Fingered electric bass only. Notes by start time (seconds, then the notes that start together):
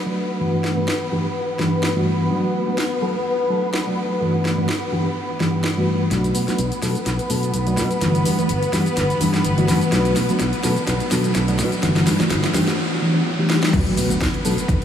6.11 B1
6.35 B2
6.48 muted fingered electric bass stroke
6.59 B1
6.82 B2
7.06 B1
7.30 B2
7.54 B1
7.78 B2
8.01 G1
8.25 G2
8.39 muted fingered electric bass stroke
8.49 G1
8.73 G2
8.97 G1
9.21 G2
9.45 G1
9.68 G2
9.92 B1
10.16 B2
10.30 muted fingered electric bass stroke
10.41 B1
10.64 B2
10.88 B1
11.12 B2
11.36 B1
11.59 B2
11.83 G1
12.07 G2
12.20 muted fingered electric bass stroke
12.30 G1
12.54 G2
13.73 B1
13.97 B2
14.10 muted fingered electric bass stroke
14.21 B1
14.45 B2
14.69 B1